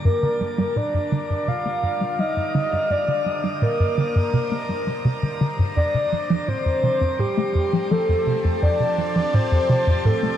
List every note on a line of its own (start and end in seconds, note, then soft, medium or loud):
0.00 7.29 D3 medium
0.00 5.77 G3 medium
0.00 1.39 A#3 medium
0.00 5.76 A5 medium
0.05 0.18 G2 medium
0.05 0.78 A#4 loud
0.23 0.40 D3 medium
0.41 0.53 G3 medium
0.58 0.71 G3 loud
0.76 0.93 A#2 medium
0.76 1.50 D5 loud
0.94 1.02 G2 medium
1.12 1.29 D3 loud
1.18 6.72 C5 medium
1.30 1.43 G2 medium
1.48 1.60 C3 medium
1.48 2.21 F5 loud
1.66 1.73 A#3 medium
1.83 1.96 G2 medium
2.01 2.18 G3 medium
2.19 2.36 G3 medium
2.19 2.90 D#5 loud
2.37 2.45 G2 medium
2.55 2.72 D3 loud
2.73 2.86 G2 medium
2.90 3.03 G2 medium
2.90 3.64 D5 loud
3.08 3.25 D3 medium
3.26 3.39 G3 medium
3.44 3.57 G3 loud
3.62 3.79 A#2 medium
3.62 5.41 A#4 medium
3.80 3.88 G2 medium
3.98 4.15 D3 medium
4.16 4.28 G2 medium
4.34 4.46 C3 medium
4.52 4.59 A#3 medium
4.69 4.82 G3 medium
4.87 4.95 G3 medium
5.05 5.22 C3 medium
5.23 5.35 D3 medium
5.41 5.53 D3 loud
5.59 5.76 G2 medium
5.76 5.89 F2 medium
5.76 10.37 F3 medium
5.76 6.50 D5 loud
5.95 6.11 C3 medium
5.95 10.37 C4 medium
6.13 6.25 F3 medium
6.30 6.43 F3 loud
6.48 6.65 A2 medium
6.48 7.21 C5 loud
6.54 10.37 A5 medium
6.66 6.73 F2 medium
6.77 10.37 G4 medium
6.83 7.01 C3 medium
7.01 7.14 F2 medium
7.19 7.32 A2 medium
7.19 7.93 G4 loud
7.37 7.45 A3 medium
7.55 7.68 F2 medium
7.73 7.90 F3 medium
7.91 8.08 F3 medium
7.91 8.62 A4 loud
8.09 8.16 F2 medium
8.27 8.44 C3 loud
8.45 8.57 F2 medium
8.63 8.75 F2 medium
8.63 9.36 D5 loud
8.80 8.97 C3 medium
8.98 9.11 F3 medium
9.16 9.28 F3 loud
9.34 9.51 A2 medium
9.34 10.07 C5 loud
9.52 9.59 F2 medium
9.69 9.86 C3 medium
9.87 10.00 F2 medium
10.05 10.18 A2 medium
10.05 10.37 A4 loud
10.23 10.30 A3 medium